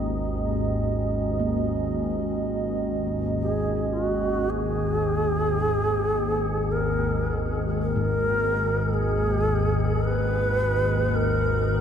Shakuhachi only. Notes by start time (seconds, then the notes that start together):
3.40 G#4
3.93 F4
4.04 F#4
4.50 G#4
6.71 A#4
7.82 A#4
8.94 G#4
10.05 B4
11.15 A#4